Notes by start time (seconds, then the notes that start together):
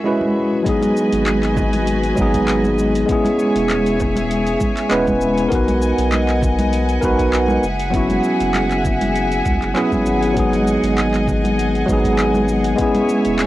Already playing: G#3 C#4 E4 F#4 G#4 A#4 E5
0.04 G#3 C#4 E4 F#4 B4
0.21 high conga
0.63 F#3 G#3 B3 F#4 B4 D#5 G#5, kick, open hi-hat, cabasa
0.67 D#4 G#4
0.82 open hi-hat, high conga, cabasa
0.97 cabasa
1.12 G#1, open hi-hat, cabasa
1.26 clap, open hi-hat, high conga, cabasa
1.43 clap, open hi-hat, cabasa
1.56 kick, low conga, cabasa
1.73 open hi-hat, high conga, cabasa
1.87 open hi-hat, cabasa
2.04 open hi-hat, cabasa
2.15 G#1 F#3 G#3 B3, kick, high conga, cabasa
2.20 D#4 G#4
2.34 kick, open hi-hat, cabasa
2.48 clap, open hi-hat, cabasa
2.64 high conga, cabasa
2.79 cabasa
2.95 open hi-hat, cabasa
3.06 G#3 B3 C#4 G#4 C#5 E5 G#5, kick, open hi-hat, cabasa
3.11 E4 G#4
3.25 open hi-hat, high conga, cabasa
3.39 cabasa
3.56 E1, open hi-hat, cabasa
3.70 clap, open hi-hat, high conga, cabasa
3.86 open hi-hat, cabasa
4.00 kick, low conga, cabasa
4.16 open hi-hat, high conga, cabasa
4.31 open hi-hat, cabasa
4.47 open hi-hat, cabasa
4.60 kick, high conga, cabasa
4.77 clap, open hi-hat, cabasa
4.89 E1 G#3 B3 C#4 E4 B4, clap, open hi-hat, cabasa
5.07 kick, high conga, cabasa
5.21 cabasa
5.38 open hi-hat, cabasa
5.49 B1 B3 D#4 A#4 D#5 F#5, kick, open hi-hat, cabasa
5.53 F#4 B4
5.68 open hi-hat, high conga, cabasa
5.82 cabasa
5.98 B1, open hi-hat, cabasa
6.12 clap, open hi-hat, high conga, cabasa
6.29 clap, open hi-hat, cabasa
6.42 kick, low conga, cabasa
6.59 open hi-hat, high conga, cabasa
6.73 open hi-hat, cabasa
6.89 open hi-hat, cabasa
7.01 B1 B3 D#4 F#4 A#4 B4, kick, high conga, cabasa
7.19 kick, open hi-hat, cabasa
7.34 clap, open hi-hat, cabasa
7.48 high conga, cabasa
7.63 F#1 G#4 E5, cabasa
7.80 open hi-hat, cabasa
7.91 F#3 B3 C#4, kick, open hi-hat, cabasa
7.95 E4 F#4
8.10 open hi-hat, high conga, cabasa
8.24 cabasa
8.40 F#1, open hi-hat, cabasa
8.54 clap, open hi-hat, high conga, cabasa
8.71 clap, open hi-hat, cabasa
8.85 kick, low conga, cabasa
9.01 open hi-hat, high conga, cabasa
9.15 open hi-hat, cabasa
9.31 open hi-hat, cabasa
9.45 C#2, kick, high conga, cabasa
9.62 F#1, clap, open hi-hat, cabasa
9.74 F#3 B3 C#4 E4 G#4, clap, open hi-hat, cabasa
9.92 kick, high conga, cabasa
10.06 G#1, cabasa
10.22 open hi-hat, cabasa
10.33 F#3 G#3 B3, kick, open hi-hat, cabasa
10.37 D#4 G#4 D#5
10.53 open hi-hat, high conga, cabasa
10.67 cabasa
10.83 G#1, open hi-hat, cabasa
10.97 clap, open hi-hat, high conga, cabasa
11.14 clap, open hi-hat, cabasa
11.27 kick, low conga, cabasa
11.44 open hi-hat, high conga, cabasa
11.59 open hi-hat, cabasa
11.75 open hi-hat, cabasa
11.86 G#1 F#3 G#3 B3, kick, high conga, cabasa
11.90 D#4 G#4
12.04 kick, open hi-hat, cabasa
12.19 clap, open hi-hat, cabasa
12.34 high conga, cabasa
12.49 cabasa
12.65 open hi-hat, cabasa
12.76 G#3 B3 C#4 C#5 E5, kick, open hi-hat, cabasa
12.81 E4 G#4
12.95 open hi-hat, high conga, cabasa
13.09 cabasa
13.25 E1, open hi-hat, cabasa
13.38 clap, open hi-hat, high conga, cabasa